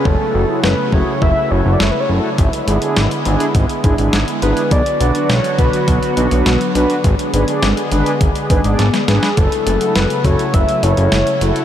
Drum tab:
HH |----------------|xxxxxxxxxxxxxxxx|xxxxxxxxxxxxxxxx|xxxxxxxxxxxxxxxx|
SD |----o-------o---|----o-------o---|----o-------o---|----o-------oooo|
BD |o-----o-o-------|o-------o-o-----|o-----o-o-------|o-------o-o-----|

HH |xxxxxxxxxxxxxxxx|
SD |----o-------o---|
BD |o-----o-o-------|